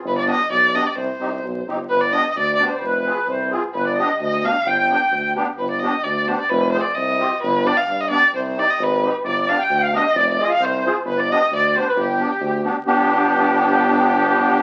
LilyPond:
<<
  \new Staff \with { instrumentName = "Accordion" } { \time 2/4 \tempo 4 = 131 r2 | r2 | b'16 d''16 ees''8 d''8 d''16 c''16 | b'4 c''8 r8 |
b'16 d''16 ees''8 ees''8 f''8 | g''4. r8 | r2 | r2 |
r2 | r2 | d''8. g''8 f''16 ees''8 | d''16 d''16 ees''16 f''16 c''8. r16 |
b'16 d''16 ees''8 d''8 c''16 b'16 | g'4. r8 | g'2~ | g'2 | }
  \new Staff \with { instrumentName = "Violin" } { \time 2/4 b'16 d''16 ees''8 d''8 ees''16 d''16 | c''4. r8 | b'16 d''16 ees''16. ees''32 d''8 d''16 c''16 | b'4. r8 |
b'16 d''16 ees''8 ees''8 f''8 | g''4. r8 | b'16 d''16 ees''8 d''8 c''16 d''16 | b'8 c''16 d''16 ees''4 |
b'8 d''16 f''8 ees''16 d''8 | c''16 c''16 d''16 ees''16 b'8. r16 | d''8 f''16 g''8 f''16 ees''8 | d''16 d''16 ees''16 f''16 c''8. r16 |
b'16 d''16 ees''8 d''8 c''16 b'16 | g'4. r8 | g'2~ | g'2 | }
  \new Staff \with { instrumentName = "Accordion" } { \time 2/4 r8 <b d' g'>16 r8. <b d' g'>16 r16 | r8 <c' ees' g'>16 r8. <c' ees' g'>16 r16 | r8 <b d' g'>16 r8. <b d' g'>16 r16 | r8 <c' f' aes'>16 r8. <c' f' aes'>16 r16 |
r8 <b d' g'>16 r8. <b d' g'>16 r16 | r8 <b d' g'>16 r8. <b d' g'>16 r16 | r8 <b d' g'>16 r8. <b d' g'>16 r16 | r8 <c' f' aes'>16 r8. <c' f' g'>16 r16 |
r8 <b d' g'>16 r8. <b d' g'>16 r16 | r8 <c' ees' g'>16 r8. <c' ees' g'>16 r16 | r8 <b d' g'>16 r8. <b d' g'>16 r16 | r8 <c' f' aes'>16 r8. <c' f' aes'>16 r16 |
r8 <b d' g'>16 r8. <b d' g'>16 r16 | r8 <b d' g'>16 r8. <b d' g'>16 r16 | <b d' g'>2~ | <b d' g'>2 | }
  \new Staff \with { instrumentName = "Tuba" } { \clef bass \time 2/4 g,,4 b,,4 | c,8 c,8 b,,8 g,,8 | g,,4 d,4 | f,,4 c,4 |
g,,4 d,4 | g,,4 d,4 | g,,4 d,4 | f,,4 c,4 |
g,,4 g,4 | c,4 aes,,4 | g,,4 d,4 | f,,4 c,4 |
g,,4 d,4 | g,,4 d,4 | g,,2~ | g,,2 | }
>>